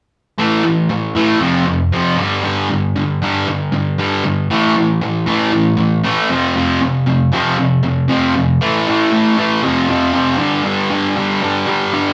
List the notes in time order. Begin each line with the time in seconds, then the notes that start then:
0.39 A2 E3 A3
0.64 A2 E3
0.89 A2 E3
1.15 A2 E3 A3
1.40 F2 C3 F3
1.66 F2 C3
1.93 F2 C3 F3
2.17 G2 D3 G3
2.43 G2 D3 G3
2.70 G2 D3
2.96 G2 D3
3.22 G2 D3 G3
3.47 G2 D3
3.72 G2 D3
3.99 G2 D3 G3
4.24 G2 D3
4.50 A2 E3 A3
4.77 A2 E3
5.01 A2 E3
5.26 A2 E3 A3
5.53 A2 E3
5.77 A2 E3
6.04 A2 E3 A3
6.30 F2 C3 F3
6.56 F2 C3 F3
6.82 F2 C3
7.07 F2 C3
7.32 F2 C3 F3
7.58 F2 C3
7.83 F2 C3
8.08 F2 C3 F3
8.36 F2 C3
8.61 A2 E3 A3
8.87 A2 E3 A3
9.11 A2 E3 A3
9.37 A2 E3 A3
9.62 F2 C3 F3
9.89 F2 C3 F3
10.13 F2 C3 F3
10.38 G2 D3 G3
10.64 G2 D3 G3
10.91 G2 D3 G3
11.16 G2 D3 G3
11.42 G2 D3 G3
11.67 G2 D3 G3
11.93 G2 D3 G3